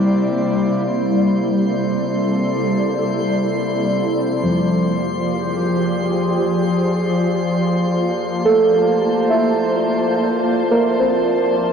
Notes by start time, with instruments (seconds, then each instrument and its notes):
Already playing: harmonium C3 G3, ambient pad C3 G3 A#3 E4 D5, synth keys A#4, synth texture C5 C6
0.71 synth texture C5 C6
1.48 ambient pad A4
4.11 ambient pad F3
4.28 ambient pad F4
4.43 synth keys F3
4.48 ambient pad G4
4.96 ambient pad G#4
7.50 ambient pad A#3
7.72 ambient pad A5
8.42 synth keys A4, ambient pad C5
9.30 synth keys E5
10.71 synth keys A#4
10.90 ambient pad F3
10.99 synth keys C5
11.07 ambient pad G4